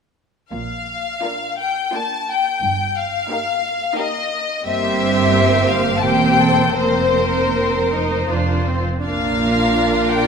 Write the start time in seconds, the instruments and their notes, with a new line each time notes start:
0.52 double bass section A#1, cello section A#2, violin section F5
1.22 viola section A#3 D4, violin section F4 A#4
1.59 violin section G5
1.93 viola section A#3 D4, violin section F4 A#4 A5
2.29 violin section G5
2.62 double bass section G1, cello section G2
2.96 violin section F5
3.30 viola section A#3 D#4, violin section G4 A#4
3.95 viola section A#3 D#4, violin section G4 A#4 D#5
4.64 double bass section G1, cello section G2, viola section A#3 C4, violin section G4 C5 E5
5.68 violin section F5
5.97 violin section A5
6.01 double bass section E1, cello section E2, viola section A#3 C4, violin section G4 C5 G5
6.37 violin section A4
6.75 double bass section F1, cello section F2, viola section A#3 C4, violin section A#4 C5
7.56 viola section C4
7.93 viola section D#4
8.29 double bass section F1, cello section F2, viola section D4, violin section F4 C5
8.68 viola section C4
9.04 double bass section A#1, cello section A#2, viola section A#3 D4, violin section F4 A#4 F5
10.11 violin section G5